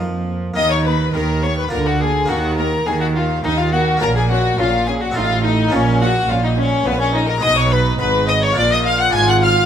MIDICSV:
0, 0, Header, 1, 8, 480
1, 0, Start_track
1, 0, Key_signature, -6, "minor"
1, 0, Tempo, 577478
1, 469, Time_signature, 3, 2, 24, 8
1, 3336, Tempo, 570342
1, 8086, End_track
2, 0, Start_track
2, 0, Title_t, "Violin section"
2, 0, Program_c, 0, 48
2, 475, Note_on_c, 0, 87, 103
2, 584, Note_off_c, 0, 87, 0
2, 604, Note_on_c, 0, 85, 97
2, 715, Note_on_c, 0, 83, 95
2, 717, Note_off_c, 0, 85, 0
2, 948, Note_off_c, 0, 83, 0
2, 957, Note_on_c, 0, 82, 80
2, 1189, Note_off_c, 0, 82, 0
2, 1201, Note_on_c, 0, 85, 87
2, 1315, Note_off_c, 0, 85, 0
2, 1324, Note_on_c, 0, 83, 76
2, 1435, Note_on_c, 0, 82, 103
2, 1436, Note_off_c, 0, 83, 0
2, 1481, Note_off_c, 0, 82, 0
2, 1554, Note_on_c, 0, 78, 88
2, 1668, Note_off_c, 0, 78, 0
2, 1673, Note_on_c, 0, 80, 86
2, 1909, Note_off_c, 0, 80, 0
2, 1913, Note_on_c, 0, 78, 100
2, 2147, Note_off_c, 0, 78, 0
2, 2148, Note_on_c, 0, 82, 90
2, 2379, Note_off_c, 0, 82, 0
2, 2385, Note_on_c, 0, 80, 102
2, 2502, Note_off_c, 0, 80, 0
2, 2507, Note_on_c, 0, 78, 81
2, 2620, Note_off_c, 0, 78, 0
2, 2622, Note_on_c, 0, 77, 84
2, 2855, Note_off_c, 0, 77, 0
2, 2866, Note_on_c, 0, 75, 121
2, 2980, Note_off_c, 0, 75, 0
2, 2988, Note_on_c, 0, 77, 105
2, 3101, Note_on_c, 0, 78, 99
2, 3102, Note_off_c, 0, 77, 0
2, 3167, Note_off_c, 0, 78, 0
2, 3337, Note_on_c, 0, 82, 112
2, 3385, Note_off_c, 0, 82, 0
2, 3469, Note_on_c, 0, 80, 100
2, 3580, Note_off_c, 0, 80, 0
2, 3583, Note_on_c, 0, 78, 99
2, 3815, Note_off_c, 0, 78, 0
2, 3821, Note_on_c, 0, 77, 104
2, 4052, Note_off_c, 0, 77, 0
2, 4059, Note_on_c, 0, 80, 93
2, 4106, Note_off_c, 0, 80, 0
2, 4185, Note_on_c, 0, 78, 81
2, 4296, Note_off_c, 0, 78, 0
2, 4296, Note_on_c, 0, 77, 114
2, 4529, Note_off_c, 0, 77, 0
2, 4537, Note_on_c, 0, 75, 100
2, 4769, Note_off_c, 0, 75, 0
2, 4774, Note_on_c, 0, 73, 107
2, 5012, Note_off_c, 0, 73, 0
2, 5016, Note_on_c, 0, 78, 110
2, 5249, Note_off_c, 0, 78, 0
2, 5255, Note_on_c, 0, 77, 88
2, 5373, Note_off_c, 0, 77, 0
2, 5382, Note_on_c, 0, 75, 96
2, 5496, Note_off_c, 0, 75, 0
2, 5497, Note_on_c, 0, 73, 107
2, 5728, Note_off_c, 0, 73, 0
2, 5737, Note_on_c, 0, 71, 127
2, 5853, Note_off_c, 0, 71, 0
2, 5854, Note_on_c, 0, 73, 110
2, 5968, Note_off_c, 0, 73, 0
2, 5970, Note_on_c, 0, 75, 97
2, 6088, Note_off_c, 0, 75, 0
2, 6102, Note_on_c, 0, 82, 111
2, 6209, Note_on_c, 0, 87, 125
2, 6214, Note_off_c, 0, 82, 0
2, 6328, Note_off_c, 0, 87, 0
2, 6335, Note_on_c, 0, 85, 112
2, 6450, Note_on_c, 0, 83, 106
2, 6451, Note_off_c, 0, 85, 0
2, 6517, Note_off_c, 0, 83, 0
2, 6684, Note_on_c, 0, 83, 99
2, 6751, Note_off_c, 0, 83, 0
2, 6929, Note_on_c, 0, 87, 108
2, 6977, Note_off_c, 0, 87, 0
2, 7060, Note_on_c, 0, 85, 102
2, 7173, Note_off_c, 0, 85, 0
2, 7181, Note_on_c, 0, 86, 127
2, 7227, Note_off_c, 0, 86, 0
2, 7310, Note_on_c, 0, 87, 114
2, 7354, Note_off_c, 0, 87, 0
2, 7421, Note_on_c, 0, 89, 105
2, 7534, Note_off_c, 0, 89, 0
2, 7553, Note_on_c, 0, 90, 116
2, 7659, Note_on_c, 0, 92, 118
2, 7663, Note_off_c, 0, 90, 0
2, 7774, Note_off_c, 0, 92, 0
2, 7788, Note_on_c, 0, 90, 118
2, 7834, Note_off_c, 0, 90, 0
2, 7901, Note_on_c, 0, 89, 114
2, 8086, Note_off_c, 0, 89, 0
2, 8086, End_track
3, 0, Start_track
3, 0, Title_t, "Violin"
3, 0, Program_c, 1, 40
3, 466, Note_on_c, 1, 75, 86
3, 580, Note_off_c, 1, 75, 0
3, 593, Note_on_c, 1, 73, 69
3, 640, Note_off_c, 1, 73, 0
3, 709, Note_on_c, 1, 71, 77
3, 945, Note_off_c, 1, 71, 0
3, 951, Note_on_c, 1, 70, 75
3, 1189, Note_on_c, 1, 73, 79
3, 1202, Note_off_c, 1, 70, 0
3, 1309, Note_off_c, 1, 73, 0
3, 1316, Note_on_c, 1, 71, 76
3, 1430, Note_off_c, 1, 71, 0
3, 1434, Note_on_c, 1, 70, 82
3, 1553, Note_on_c, 1, 66, 83
3, 1565, Note_off_c, 1, 70, 0
3, 1670, Note_on_c, 1, 68, 81
3, 1683, Note_off_c, 1, 66, 0
3, 1901, Note_on_c, 1, 66, 78
3, 1913, Note_off_c, 1, 68, 0
3, 2133, Note_off_c, 1, 66, 0
3, 2138, Note_on_c, 1, 70, 76
3, 2380, Note_on_c, 1, 68, 83
3, 2392, Note_off_c, 1, 70, 0
3, 2495, Note_off_c, 1, 68, 0
3, 2500, Note_on_c, 1, 66, 73
3, 2548, Note_off_c, 1, 66, 0
3, 2623, Note_on_c, 1, 65, 70
3, 2689, Note_off_c, 1, 65, 0
3, 2862, Note_on_c, 1, 63, 89
3, 2909, Note_off_c, 1, 63, 0
3, 2979, Note_on_c, 1, 65, 76
3, 3094, Note_on_c, 1, 66, 86
3, 3106, Note_off_c, 1, 65, 0
3, 3334, Note_off_c, 1, 66, 0
3, 3338, Note_on_c, 1, 70, 85
3, 3450, Note_off_c, 1, 70, 0
3, 3455, Note_on_c, 1, 68, 75
3, 3572, Note_off_c, 1, 68, 0
3, 3577, Note_on_c, 1, 66, 79
3, 3811, Note_off_c, 1, 66, 0
3, 3820, Note_on_c, 1, 65, 88
3, 4054, Note_on_c, 1, 68, 76
3, 4067, Note_off_c, 1, 65, 0
3, 4170, Note_on_c, 1, 66, 74
3, 4182, Note_off_c, 1, 68, 0
3, 4298, Note_on_c, 1, 65, 91
3, 4311, Note_off_c, 1, 66, 0
3, 4530, Note_off_c, 1, 65, 0
3, 4535, Note_on_c, 1, 63, 79
3, 4776, Note_on_c, 1, 61, 88
3, 4789, Note_off_c, 1, 63, 0
3, 5019, Note_on_c, 1, 66, 90
3, 5032, Note_off_c, 1, 61, 0
3, 5259, Note_on_c, 1, 65, 85
3, 5272, Note_off_c, 1, 66, 0
3, 5372, Note_off_c, 1, 65, 0
3, 5377, Note_on_c, 1, 63, 84
3, 5423, Note_off_c, 1, 63, 0
3, 5498, Note_on_c, 1, 61, 91
3, 5738, Note_on_c, 1, 59, 97
3, 5751, Note_off_c, 1, 61, 0
3, 5850, Note_off_c, 1, 59, 0
3, 5855, Note_on_c, 1, 61, 80
3, 5976, Note_on_c, 1, 63, 88
3, 5989, Note_off_c, 1, 61, 0
3, 6092, Note_off_c, 1, 63, 0
3, 6097, Note_on_c, 1, 70, 94
3, 6143, Note_off_c, 1, 70, 0
3, 6213, Note_on_c, 1, 75, 100
3, 6327, Note_off_c, 1, 75, 0
3, 6341, Note_on_c, 1, 73, 88
3, 6457, Note_on_c, 1, 71, 100
3, 6470, Note_off_c, 1, 73, 0
3, 6688, Note_off_c, 1, 71, 0
3, 6693, Note_on_c, 1, 71, 86
3, 6932, Note_on_c, 1, 75, 96
3, 6945, Note_off_c, 1, 71, 0
3, 7053, Note_on_c, 1, 73, 94
3, 7066, Note_off_c, 1, 75, 0
3, 7172, Note_off_c, 1, 73, 0
3, 7177, Note_on_c, 1, 74, 95
3, 7297, Note_on_c, 1, 75, 94
3, 7310, Note_off_c, 1, 74, 0
3, 7407, Note_off_c, 1, 75, 0
3, 7412, Note_on_c, 1, 77, 97
3, 7530, Note_off_c, 1, 77, 0
3, 7535, Note_on_c, 1, 78, 109
3, 7649, Note_off_c, 1, 78, 0
3, 7654, Note_on_c, 1, 80, 102
3, 7781, Note_on_c, 1, 78, 90
3, 7794, Note_off_c, 1, 80, 0
3, 7897, Note_on_c, 1, 77, 94
3, 7909, Note_off_c, 1, 78, 0
3, 8086, Note_off_c, 1, 77, 0
3, 8086, End_track
4, 0, Start_track
4, 0, Title_t, "Violin section"
4, 0, Program_c, 2, 48
4, 468, Note_on_c, 2, 75, 103
4, 580, Note_off_c, 2, 75, 0
4, 584, Note_on_c, 2, 73, 87
4, 705, Note_on_c, 2, 71, 84
4, 707, Note_off_c, 2, 73, 0
4, 945, Note_on_c, 2, 70, 81
4, 948, Note_off_c, 2, 71, 0
4, 1188, Note_off_c, 2, 70, 0
4, 1191, Note_on_c, 2, 73, 73
4, 1310, Note_off_c, 2, 73, 0
4, 1312, Note_on_c, 2, 71, 58
4, 1428, Note_off_c, 2, 71, 0
4, 1431, Note_on_c, 2, 70, 96
4, 1479, Note_off_c, 2, 70, 0
4, 1549, Note_on_c, 2, 66, 70
4, 1596, Note_off_c, 2, 66, 0
4, 1670, Note_on_c, 2, 68, 87
4, 1902, Note_off_c, 2, 68, 0
4, 1908, Note_on_c, 2, 66, 89
4, 1974, Note_off_c, 2, 66, 0
4, 2147, Note_on_c, 2, 70, 83
4, 2213, Note_off_c, 2, 70, 0
4, 2383, Note_on_c, 2, 68, 86
4, 2430, Note_off_c, 2, 68, 0
4, 2503, Note_on_c, 2, 66, 83
4, 2550, Note_off_c, 2, 66, 0
4, 2623, Note_on_c, 2, 65, 81
4, 2855, Note_off_c, 2, 65, 0
4, 2861, Note_on_c, 2, 63, 95
4, 2977, Note_off_c, 2, 63, 0
4, 2984, Note_on_c, 2, 65, 77
4, 3101, Note_off_c, 2, 65, 0
4, 3103, Note_on_c, 2, 66, 97
4, 3334, Note_off_c, 2, 66, 0
4, 3339, Note_on_c, 2, 70, 112
4, 3458, Note_off_c, 2, 70, 0
4, 3462, Note_on_c, 2, 68, 80
4, 3509, Note_off_c, 2, 68, 0
4, 3585, Note_on_c, 2, 66, 93
4, 3815, Note_off_c, 2, 66, 0
4, 3819, Note_on_c, 2, 65, 81
4, 4056, Note_off_c, 2, 65, 0
4, 4058, Note_on_c, 2, 68, 78
4, 4175, Note_off_c, 2, 68, 0
4, 4176, Note_on_c, 2, 66, 69
4, 4223, Note_off_c, 2, 66, 0
4, 4291, Note_on_c, 2, 65, 93
4, 4527, Note_off_c, 2, 65, 0
4, 4536, Note_on_c, 2, 63, 97
4, 4773, Note_on_c, 2, 61, 103
4, 4774, Note_off_c, 2, 63, 0
4, 5012, Note_off_c, 2, 61, 0
4, 5016, Note_on_c, 2, 66, 91
4, 5248, Note_off_c, 2, 66, 0
4, 5253, Note_on_c, 2, 65, 82
4, 5372, Note_off_c, 2, 65, 0
4, 5373, Note_on_c, 2, 63, 86
4, 5486, Note_on_c, 2, 61, 89
4, 5492, Note_off_c, 2, 63, 0
4, 5725, Note_on_c, 2, 59, 111
4, 5728, Note_off_c, 2, 61, 0
4, 5844, Note_on_c, 2, 61, 84
4, 5847, Note_off_c, 2, 59, 0
4, 5962, Note_on_c, 2, 63, 99
4, 5963, Note_off_c, 2, 61, 0
4, 6084, Note_off_c, 2, 63, 0
4, 6084, Note_on_c, 2, 70, 89
4, 6200, Note_on_c, 2, 75, 114
4, 6205, Note_off_c, 2, 70, 0
4, 6321, Note_off_c, 2, 75, 0
4, 6322, Note_on_c, 2, 73, 92
4, 6440, Note_on_c, 2, 71, 90
4, 6444, Note_off_c, 2, 73, 0
4, 6673, Note_off_c, 2, 71, 0
4, 6683, Note_on_c, 2, 71, 101
4, 6922, Note_off_c, 2, 71, 0
4, 6924, Note_on_c, 2, 75, 96
4, 7042, Note_on_c, 2, 73, 98
4, 7045, Note_off_c, 2, 75, 0
4, 7164, Note_off_c, 2, 73, 0
4, 7166, Note_on_c, 2, 74, 110
4, 7283, Note_on_c, 2, 75, 94
4, 7289, Note_off_c, 2, 74, 0
4, 7407, Note_on_c, 2, 77, 108
4, 7408, Note_off_c, 2, 75, 0
4, 7525, Note_on_c, 2, 78, 94
4, 7529, Note_off_c, 2, 77, 0
4, 7646, Note_on_c, 2, 80, 103
4, 7649, Note_off_c, 2, 78, 0
4, 7763, Note_on_c, 2, 78, 89
4, 7770, Note_off_c, 2, 80, 0
4, 7813, Note_off_c, 2, 78, 0
4, 7891, Note_on_c, 2, 77, 102
4, 8086, Note_off_c, 2, 77, 0
4, 8086, End_track
5, 0, Start_track
5, 0, Title_t, "Viola section"
5, 0, Program_c, 3, 48
5, 0, Note_on_c, 3, 58, 67
5, 276, Note_off_c, 3, 58, 0
5, 467, Note_on_c, 3, 58, 70
5, 534, Note_off_c, 3, 58, 0
5, 711, Note_on_c, 3, 58, 60
5, 777, Note_off_c, 3, 58, 0
5, 946, Note_on_c, 3, 58, 65
5, 1012, Note_off_c, 3, 58, 0
5, 1186, Note_on_c, 3, 58, 62
5, 1253, Note_off_c, 3, 58, 0
5, 1424, Note_on_c, 3, 58, 60
5, 1490, Note_off_c, 3, 58, 0
5, 1663, Note_on_c, 3, 58, 66
5, 1730, Note_off_c, 3, 58, 0
5, 1900, Note_on_c, 3, 58, 61
5, 1966, Note_off_c, 3, 58, 0
5, 2138, Note_on_c, 3, 58, 66
5, 2204, Note_off_c, 3, 58, 0
5, 2373, Note_on_c, 3, 58, 64
5, 2439, Note_off_c, 3, 58, 0
5, 2617, Note_on_c, 3, 58, 64
5, 2683, Note_off_c, 3, 58, 0
5, 2853, Note_on_c, 3, 58, 60
5, 2919, Note_off_c, 3, 58, 0
5, 3095, Note_on_c, 3, 58, 61
5, 3161, Note_off_c, 3, 58, 0
5, 3339, Note_on_c, 3, 61, 67
5, 3407, Note_off_c, 3, 61, 0
5, 3583, Note_on_c, 3, 61, 69
5, 3650, Note_off_c, 3, 61, 0
5, 3814, Note_on_c, 3, 61, 78
5, 3881, Note_off_c, 3, 61, 0
5, 4058, Note_on_c, 3, 61, 66
5, 4126, Note_off_c, 3, 61, 0
5, 4295, Note_on_c, 3, 63, 72
5, 4363, Note_off_c, 3, 63, 0
5, 4534, Note_on_c, 3, 63, 71
5, 4601, Note_off_c, 3, 63, 0
5, 4774, Note_on_c, 3, 61, 78
5, 4842, Note_off_c, 3, 61, 0
5, 5013, Note_on_c, 3, 61, 77
5, 5080, Note_off_c, 3, 61, 0
5, 5254, Note_on_c, 3, 61, 75
5, 5322, Note_off_c, 3, 61, 0
5, 5489, Note_on_c, 3, 61, 70
5, 5557, Note_off_c, 3, 61, 0
5, 5728, Note_on_c, 3, 61, 72
5, 5796, Note_off_c, 3, 61, 0
5, 5967, Note_on_c, 3, 61, 72
5, 6034, Note_off_c, 3, 61, 0
5, 6205, Note_on_c, 3, 63, 76
5, 7136, Note_off_c, 3, 63, 0
5, 7173, Note_on_c, 3, 65, 85
5, 8086, Note_off_c, 3, 65, 0
5, 8086, End_track
6, 0, Start_track
6, 0, Title_t, "Harpsichord"
6, 0, Program_c, 4, 6
6, 0, Note_on_c, 4, 53, 59
6, 0, Note_on_c, 4, 63, 50
6, 431, Note_off_c, 4, 63, 0
6, 435, Note_off_c, 4, 53, 0
6, 446, Note_on_c, 4, 58, 52
6, 460, Note_on_c, 4, 63, 56
6, 469, Note_on_c, 4, 51, 58
6, 869, Note_off_c, 4, 51, 0
6, 949, Note_on_c, 4, 51, 62
6, 1347, Note_off_c, 4, 51, 0
6, 1389, Note_off_c, 4, 58, 0
6, 1396, Note_off_c, 4, 63, 0
6, 1400, Note_on_c, 4, 58, 55
6, 1414, Note_on_c, 4, 65, 55
6, 1426, Note_on_c, 4, 50, 57
6, 1823, Note_off_c, 4, 50, 0
6, 1865, Note_off_c, 4, 58, 0
6, 1875, Note_on_c, 4, 58, 60
6, 1883, Note_off_c, 4, 65, 0
6, 1889, Note_on_c, 4, 63, 61
6, 1902, Note_on_c, 4, 51, 64
6, 2299, Note_off_c, 4, 51, 0
6, 2382, Note_on_c, 4, 51, 68
6, 2778, Note_off_c, 4, 51, 0
6, 2859, Note_on_c, 4, 51, 60
6, 3255, Note_off_c, 4, 51, 0
6, 3287, Note_off_c, 4, 58, 0
6, 3294, Note_off_c, 4, 63, 0
6, 3300, Note_on_c, 4, 58, 55
6, 3312, Note_on_c, 4, 61, 51
6, 3322, Note_on_c, 4, 65, 56
6, 3334, Note_on_c, 4, 46, 60
6, 3734, Note_off_c, 4, 46, 0
6, 3816, Note_on_c, 4, 46, 69
6, 4212, Note_off_c, 4, 46, 0
6, 4246, Note_off_c, 4, 58, 0
6, 4252, Note_off_c, 4, 61, 0
6, 4257, Note_off_c, 4, 65, 0
6, 4261, Note_on_c, 4, 60, 60
6, 4271, Note_on_c, 4, 63, 60
6, 4284, Note_on_c, 4, 65, 59
6, 4297, Note_on_c, 4, 45, 61
6, 4693, Note_off_c, 4, 45, 0
6, 4740, Note_on_c, 4, 58, 58
6, 4741, Note_off_c, 4, 60, 0
6, 4746, Note_off_c, 4, 63, 0
6, 4753, Note_off_c, 4, 65, 0
6, 4755, Note_on_c, 4, 61, 63
6, 4768, Note_on_c, 4, 65, 63
6, 4780, Note_on_c, 4, 46, 65
6, 5173, Note_off_c, 4, 46, 0
6, 5255, Note_on_c, 4, 46, 69
6, 5651, Note_off_c, 4, 46, 0
6, 5730, Note_on_c, 4, 46, 70
6, 6125, Note_off_c, 4, 46, 0
6, 6157, Note_off_c, 4, 58, 0
6, 6165, Note_off_c, 4, 61, 0
6, 6170, Note_on_c, 4, 56, 60
6, 6171, Note_off_c, 4, 65, 0
6, 6183, Note_on_c, 4, 63, 67
6, 6193, Note_on_c, 4, 68, 63
6, 6206, Note_on_c, 4, 47, 73
6, 6654, Note_off_c, 4, 47, 0
6, 6683, Note_on_c, 4, 44, 80
6, 7123, Note_off_c, 4, 56, 0
6, 7129, Note_off_c, 4, 63, 0
6, 7131, Note_on_c, 4, 58, 61
6, 7135, Note_off_c, 4, 44, 0
6, 7135, Note_off_c, 4, 68, 0
6, 7145, Note_on_c, 4, 62, 65
6, 7156, Note_on_c, 4, 65, 66
6, 7170, Note_on_c, 4, 46, 65
6, 7602, Note_off_c, 4, 58, 0
6, 7612, Note_off_c, 4, 62, 0
6, 7613, Note_on_c, 4, 58, 59
6, 7618, Note_off_c, 4, 46, 0
6, 7622, Note_on_c, 4, 62, 65
6, 7625, Note_off_c, 4, 65, 0
6, 7636, Note_on_c, 4, 65, 60
6, 7647, Note_on_c, 4, 44, 75
6, 8086, Note_off_c, 4, 44, 0
6, 8086, Note_off_c, 4, 58, 0
6, 8086, Note_off_c, 4, 62, 0
6, 8086, Note_off_c, 4, 65, 0
6, 8086, End_track
7, 0, Start_track
7, 0, Title_t, "Cello section"
7, 0, Program_c, 5, 48
7, 0, Note_on_c, 5, 53, 69
7, 470, Note_off_c, 5, 53, 0
7, 471, Note_on_c, 5, 51, 82
7, 895, Note_off_c, 5, 51, 0
7, 951, Note_on_c, 5, 51, 69
7, 1373, Note_off_c, 5, 51, 0
7, 1436, Note_on_c, 5, 50, 77
7, 1853, Note_off_c, 5, 50, 0
7, 1907, Note_on_c, 5, 51, 84
7, 2326, Note_off_c, 5, 51, 0
7, 2382, Note_on_c, 5, 51, 81
7, 2802, Note_off_c, 5, 51, 0
7, 2858, Note_on_c, 5, 51, 79
7, 3280, Note_off_c, 5, 51, 0
7, 3335, Note_on_c, 5, 46, 97
7, 3759, Note_off_c, 5, 46, 0
7, 3814, Note_on_c, 5, 46, 86
7, 4236, Note_off_c, 5, 46, 0
7, 4290, Note_on_c, 5, 45, 89
7, 4714, Note_off_c, 5, 45, 0
7, 4774, Note_on_c, 5, 46, 95
7, 5195, Note_off_c, 5, 46, 0
7, 5253, Note_on_c, 5, 46, 83
7, 5675, Note_off_c, 5, 46, 0
7, 5727, Note_on_c, 5, 46, 78
7, 6149, Note_off_c, 5, 46, 0
7, 6206, Note_on_c, 5, 47, 93
7, 6653, Note_off_c, 5, 47, 0
7, 6686, Note_on_c, 5, 44, 88
7, 7160, Note_off_c, 5, 44, 0
7, 7169, Note_on_c, 5, 46, 90
7, 7642, Note_off_c, 5, 46, 0
7, 7651, Note_on_c, 5, 44, 91
7, 8086, Note_off_c, 5, 44, 0
7, 8086, End_track
8, 0, Start_track
8, 0, Title_t, "Double bass section"
8, 0, Program_c, 6, 48
8, 0, Note_on_c, 6, 41, 64
8, 467, Note_off_c, 6, 41, 0
8, 469, Note_on_c, 6, 39, 73
8, 894, Note_off_c, 6, 39, 0
8, 949, Note_on_c, 6, 39, 83
8, 1372, Note_off_c, 6, 39, 0
8, 1427, Note_on_c, 6, 38, 82
8, 1848, Note_off_c, 6, 38, 0
8, 1904, Note_on_c, 6, 39, 88
8, 2325, Note_off_c, 6, 39, 0
8, 2381, Note_on_c, 6, 39, 86
8, 2801, Note_off_c, 6, 39, 0
8, 2858, Note_on_c, 6, 39, 76
8, 3279, Note_off_c, 6, 39, 0
8, 3337, Note_on_c, 6, 34, 86
8, 3760, Note_off_c, 6, 34, 0
8, 3818, Note_on_c, 6, 34, 87
8, 4238, Note_off_c, 6, 34, 0
8, 4296, Note_on_c, 6, 33, 81
8, 4717, Note_off_c, 6, 33, 0
8, 4774, Note_on_c, 6, 34, 90
8, 5195, Note_off_c, 6, 34, 0
8, 5252, Note_on_c, 6, 34, 91
8, 5674, Note_off_c, 6, 34, 0
8, 5729, Note_on_c, 6, 34, 83
8, 6150, Note_off_c, 6, 34, 0
8, 6213, Note_on_c, 6, 35, 97
8, 6657, Note_off_c, 6, 35, 0
8, 6689, Note_on_c, 6, 32, 93
8, 7162, Note_off_c, 6, 32, 0
8, 7171, Note_on_c, 6, 34, 74
8, 7643, Note_off_c, 6, 34, 0
8, 7651, Note_on_c, 6, 32, 92
8, 8086, Note_off_c, 6, 32, 0
8, 8086, End_track
0, 0, End_of_file